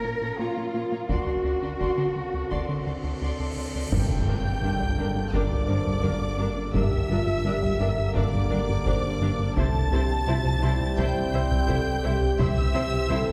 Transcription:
Already playing: synth drone F3 A#3 C#4 A#4, cello section A#4
0.03 analog synth bass A#2, viola section A#3, violin section C#5 A#5
0.21 analog synth bass A#2, viola section A#3, violin section C#5 A#5
0.39 analog synth bass A#2, viola section A#3, cello section F4, violin section C#5 A#5
0.56 analog synth bass A#2, viola section A#3, violin section C#5 A#5
0.74 analog synth bass A#2, viola section A#3, violin section C#5 A#5
0.91 analog synth bass A#2, viola section A#3, violin section C#5 A#5
1.09 analog synth bass D2, synth drone D3 C4 D4 A4, viola section D4, cello section F#4, violin section D5 C6, taiko, cymbal swell
1.26 analog synth bass D2, viola section D4, violin section D5 C6
1.44 analog synth bass D2, viola section D4, violin section D5 C6
1.62 analog synth bass D3, viola section D4, violin section D5 C6
1.80 analog synth bass D2, viola section D4, violin section D5 C6, taiko
1.97 analog synth bass D3, viola section D4, violin section D5 C6
2.16 analog synth bass D2
2.34 analog synth bass D2
2.50 analog synth bass D2, viola section D4, violin section D5 C6, taiko
2.68 analog synth bass D3, viola section D4, violin section D5 C6
2.86 analog synth bass D2, viola section D4, violin section D5 C6
3.03 analog synth bass D2, viola section D4, violin section D5 C6
3.21 analog synth bass D2, viola section D4, violin section D5 C6
3.39 analog synth bass D2, viola section D4, violin section D5 C6
3.57 analog synth bass D2, viola section D4, violin section D5 C6
3.74 analog synth bass D2, viola section D4, violin section D5 C6
3.91 double bass section G1, sub bass G1, analog synth bass G2, cello section G2, trombone section D3 A#3, synth drone D3 A#3 D4 G4, viola section D4 A#4, violin section G5 G6, taiko, impact
4.10 analog synth bass G2, taiko low
4.27 double bass section G1, analog synth bass G2, cello section G2, viola section D4 A#4
4.45 analog synth bass G2
4.62 double bass section G1, analog synth bass G2, cello section G2, viola section D4 A#4
4.80 analog synth bass G3, taiko low
4.98 double bass section G1, analog synth bass G2, cello section G2, viola section D4 A#4
5.16 analog synth bass G2
5.32 double bass section G1, cello section G2, analog synth bass G2, viola section D4 A#4, french horn section A#4, violin section D5 D6, taiko
5.51 analog synth bass G2, taiko low
5.68 double bass section G1, cello section G2, analog synth bass G2, viola section D4 A#4, french horn section C5
5.87 analog synth bass G2, taiko low
6.03 double bass section G1, analog synth bass G2, cello section G2, viola section D4 A#4, french horn section A#4, taiko
6.21 analog synth bass G2
6.39 double bass section G1, analog synth bass G2, cello section G2, viola section D4 A#4, french horn section A#4
6.56 analog synth bass G2
6.74 sub bass G1, double bass section G1, analog synth bass G2, cello section G2, synth drone D3 A#3 D4 G4, trombone section D3 A#3, viola section D4 A#4, french horn section G4, violin section E5 E6, taiko
6.91 analog synth bass G2, taiko low
7.09 double bass section G1, analog synth bass G2, cello section G2, viola section D4 A#4, french horn section F4
7.27 analog synth bass G2
7.44 double bass section G1, analog synth bass G2, cello section G2, viola section D4 A#4, french horn section G4
7.62 analog synth bass G3, taiko low
7.80 double bass section G1, analog synth bass G2, cello section G2, viola section D4 A#4, french horn section A#4
7.98 analog synth bass G2
8.15 double bass section G1, analog synth bass G2, cello section G2, viola section D4 A#4, french horn section A#4, violin section D5 D6, taiko
8.34 analog synth bass G2, taiko low
8.50 double bass section G1, cello section G2, analog synth bass G2, viola section D4 A#4
8.69 analog synth bass G2, taiko low
8.86 double bass section G1, cello section G2, analog synth bass G2, viola section D4 A#4, french horn section C5, taiko
9.04 analog synth bass G2
9.21 double bass section G1, analog synth bass G2, cello section G2, viola section D4 A#4, french horn section A#4
9.39 analog synth bass G2
9.56 sub bass C2, double bass section C2, analog synth bass C2, cello section C3, synth drone G3 C4 G4 C5, trombone section G3 C4, viola section E4 C5, french horn section A4, violin section A5 A6, taiko
9.74 analog synth bass C2, taiko low
9.91 analog synth bass C2, double bass section C2, cello section C3, viola section E4 C5, french horn section G4
10.09 analog synth bass C2
10.27 analog synth bass C2, double bass section C2, cello section C3, french horn section F3, viola section E4 C5
10.45 analog synth bass C3, taiko low
10.62 double bass section C2, analog synth bass C2, cello section C3, french horn section E4, viola section E4 C5
10.81 analog synth bass C2
10.97 analog synth bass C2, double bass section C2, cello section C3, viola section E4 C5, violin section G5 G6, taiko
11.15 analog synth bass C2, taiko low
11.33 analog synth bass C2, double bass section C2, cello section C3, viola section E4 C5
11.51 analog synth bass C2, taiko low
11.68 analog synth bass C2, double bass section C2, cello section C3, viola section E4 C5, french horn section A4, taiko
11.87 analog synth bass C2
12.03 double bass section C2, analog synth bass C2, cello section C3, viola section E4 C5, french horn section G4
12.22 analog synth bass C2
12.38 sub bass C2, double bass section C2, analog synth bass C2, cello section C3, synth drone E3 C4 G4 C5, trombone section E3 C4, viola section E4 C5, violin section E5 E6, taiko
12.57 analog synth bass C2, taiko low
12.74 double bass section C2, analog synth bass C2, cello section C3, viola section E4 C5
12.93 analog synth bass C2
13.09 double bass section C2, analog synth bass C2, cello section C3, viola section E4 C5, french horn section A4
13.28 analog synth bass C3, taiko low

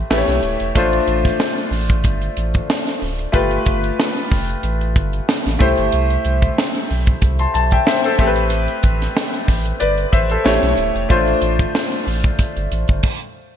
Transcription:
0.10 sub bass A1, grand piano A3 E4 G4 B4, snare
0.18 grand piano C#5
0.28 sub bass B1, snare, closed hi-hat
0.43 sub bass D1, closed hi-hat
0.60 sub bass E1, closed hi-hat
0.75 sub bass A1, grand piano A3 D4 F4 C5, kick, closed hi-hat
0.93 closed hi-hat
1.07 sub bass A1, closed hi-hat
1.25 kick, snare, closed hi-hat
1.40 snare
1.58 closed hi-hat
1.71 sub bass A1, open hi-hat
1.89 kick, closed hi-hat
2.04 sub bass G1, kick, closed hi-hat
2.22 closed hi-hat
2.37 sub bass A1, closed hi-hat
2.54 kick, closed hi-hat
2.70 snare
2.87 snare, closed hi-hat
3.02 sub bass D1, open hi-hat
3.19 closed hi-hat
3.32 sub bass G1, grand piano A3 F4 G4 B4, kick, closed hi-hat
3.51 closed hi-hat
3.66 sub bass G1, kick, closed hi-hat
3.84 closed hi-hat
4.00 snare
4.17 closed hi-hat
4.32 sub bass F1, kick, open hi-hat
4.49 closed hi-hat
4.63 sub bass A1, closed hi-hat
4.81 closed hi-hat
4.96 sub bass G1, kick, closed hi-hat
5.13 closed hi-hat
5.29 snare
5.46 sub bass A1, snare, closed hi-hat
5.59 sub bass C2, grand piano A3 E4 G4 C5, kick, closed hi-hat
5.78 sub bass G1, closed hi-hat
5.92 sub bass C2, closed hi-hat
6.10 closed hi-hat
6.25 sub bass C2, closed hi-hat
6.42 kick, closed hi-hat
6.58 snare
6.75 closed hi-hat
6.90 sub bass B1, open hi-hat
7.07 kick, closed hi-hat
7.22 sub bass C2, kick, closed hi-hat
7.39 grand piano A5 C6, closed hi-hat
7.54 sub bass B1, grand piano A5, closed hi-hat
7.71 grand piano E5 G5, kick, closed hi-hat
7.87 grand piano C5 E5, snare
8.04 grand piano A4 C5, closed hi-hat
8.18 sub bass A1, grand piano A3 C4 G4 A4, kick, closed hi-hat
8.27 grand piano B4
8.36 closed hi-hat
8.50 closed hi-hat
8.68 closed hi-hat
8.83 sub bass A1, kick, closed hi-hat
9.02 snare, closed hi-hat
9.17 snare
9.34 closed hi-hat
9.48 sub bass A1, kick, open hi-hat
9.65 closed hi-hat
9.80 sub bass G1, grand piano B4 D5, closed hi-hat
9.98 closed hi-hat
10.12 sub bass A1, grand piano C5 E5, kick, closed hi-hat
10.30 grand piano A4 C5, closed hi-hat
10.44 sub bass A1, grand piano A3 E4 G4 C#5, snare
10.63 sub bass B1, closed hi-hat
10.78 sub bass D1, closed hi-hat
10.95 sub bass E1, closed hi-hat
11.09 sub bass A1, grand piano A3 D4 F4 C5, kick, closed hi-hat
11.27 closed hi-hat
11.42 sub bass A1, closed hi-hat
11.59 kick, closed hi-hat
11.75 snare
11.92 closed hi-hat
12.07 sub bass A1, open hi-hat
12.24 kick, closed hi-hat
12.39 kick, closed hi-hat
12.56 sub bass G1, closed hi-hat
12.72 sub bass A1, closed hi-hat
12.88 sub bass G1, kick, closed hi-hat
13.03 kick, crash

